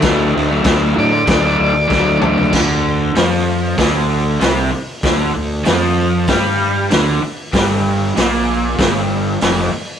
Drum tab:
CC |x---x---x-------|x---------------|----------------|----------------|
HH |----------------|----o---o---o---|o---o---o---o---|o---o---o---o---|
SD |o---o---o---o---|o---o---o---o---|o---o---o---o---|o---o---o---o---|
T2 |--------------o-|----------------|----------------|----------------|
FT |---------------o|----------------|----------------|----------------|
BD |o---o---o---o---|o-------o-------|o-------o-------|o-------o-------|